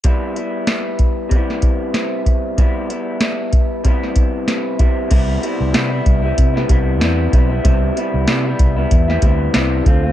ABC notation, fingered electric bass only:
X:1
M:4/4
L:1/16
Q:"Swing 16ths" 1/4=95
K:C
V:1 name="Fingered electric bass" clef=bass
z16 | z16 | C,,2 z C,, C,2 C,,2 C,2 C,,2 E,,2 B,,,2 | C,,2 z C,, C,2 C,,2 E,,2 D,,2 C,,2 D,,2 |]